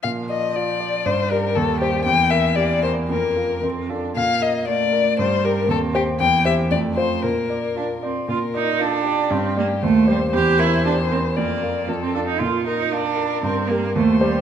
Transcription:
X:1
M:2/4
L:1/16
Q:1/4=117
K:Bb
V:1 name="Violin"
f2 e2 d4 | c2 B2 A2 G2 | g2 =e2 d2 c2 | B4 z4 |
f2 e2 d4 | c2 B2 A2 G2 | g2 =e2 d2 c2 | B6 z2 |
B4 A2 G2- | G4 c4 | c8 | d4 A2 z2 |
B8- | B4 c4 |]
V:2 name="Grand piano"
B,,2 d2 F2 d2 | G,,2 [Gd]2 E,,2 [Gc]2 | =E,,2 B2 G2 B2 | F,,2 [FB]2 F,,2 [FA]2 |
B,,2 B2 F2 B2 | G,,2 [GB]2 E,,2 [Gc]2 | =E,,2 [Gc]2 F,,2 [Fc]2 | B,,2 d2 F2 d2 |
B,,2 d2 F2 d2 | G,,2 [Gd]2 E,,2 [Gc]2 | =E,,2 B2 G2 B2 | F,,2 [FB]2 F,,2 [FA]2 |
B,,2 B2 F2 B2 | G,,2 [GB]2 E,,2 [Gc]2 |]
V:3 name="Cello"
F,8 | G,8 | B,8 | B,4 C2 D2 |
B,4 A,4 | G,4 C4 | B,4 A,4 | B,4 D2 C2 |
F2 E2 D4 | C2 B,2 A,2 G,2 | G2 =E2 D2 C2 | B,4 z C D E |
F2 E2 D4 | C2 B,2 A,2 G,2 |]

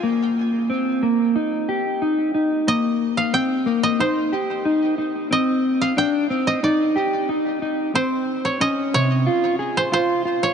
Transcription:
X:1
M:4/4
L:1/16
Q:1/4=91
K:Cm
V:1 name="Koto"
g6 z8 z2 | e3 f g3 e c3 z4 z | e3 f g3 e d3 z4 z | c3 _d e2 d4- d c c3 d |]
V:2 name="Clean electric guitar"
B,4 C2 B,2 E2 G2 E2 E2 | B,4 C2 B,2 E2 G2 E2 E2 | C4 D2 C2 E2 G2 E2 E2 | C4 _D2 C,2 F2 A2 F2 F2 |]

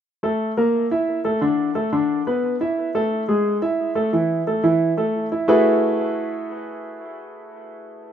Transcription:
X:1
M:4/4
L:1/8
Q:1/4=177
K:Emix
V:1 name="Grand piano"
z [A,A]2 [_B,_B]2 [Ee]2 [A,A] | [D,D]2 [A,A] [D,D]2 [B,B]2 [Ee]- | [Ee] [A,A]2 [G,G]2 [Ee]2 [A,A] | [E,E]2 [A,A] [E,E]2 [A,A]2 [Ee] |
[A,EFGAB]8- | [A,EFGAB]8 |]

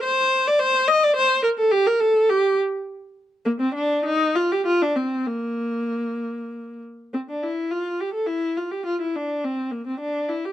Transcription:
X:1
M:3/4
L:1/16
Q:1/4=104
K:Bb
V:1 name="Viola"
c3 d c2 e d c2 B A | G B A2 G2 z6 | B, C D2 E2 F G F D C2 | B,8- B,2 z2 |
[K:F] C D E2 F2 G A E2 F G | F E D2 C2 B, C D2 E G |]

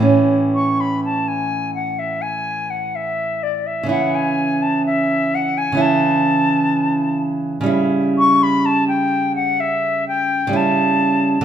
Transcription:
X:1
M:4/4
L:1/16
Q:1/4=63
K:A
V:1 name="Flute"
z2 c' b a g2 f e g2 f e2 d e | f g2 a e2 f g a6 z2 | [K:Amix] z2 c' b a g2 f e2 g2 a4 |]
V:2 name="Nylon-string guitar" clef=bass
[A,,E,C]16 | [C,E,E]8 [C,E,E]8 | [K:Amix] [C,G,E]12 [C,G,E]4 |]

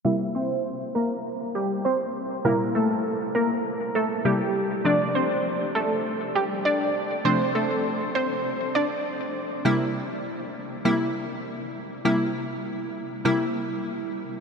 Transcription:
X:1
M:4/4
L:1/16
Q:1/4=100
K:Cmix
V:1 name="Synth pluck"
[Ee]2 [Cc]3 z [B,B] z3 [G,G] z [Cc]3 z | [B,B]2 [A,A]3 z [B,B] z3 [A,A] z [G,G]3 z | [Dd]2 [Cc]3 z [A,A] z3 [G,G] z [Dd]3 z | [Cc]2 [A,A]3 z [Cc] z3 [Dd] z4 z |
z16 | z16 |]
V:2 name="Synth stab" clef=bass
[C,G,B,E]16 | [B,,C,G,E]12 [C,G,B,E]4 | [C,F,A,D]16 | [C,F,A,D]16 |
[C,G,B,E]6 z2 [C,G,B,E]6 z2 | [C,G,B,E]6 z2 [C,G,B,E]6 z2 |]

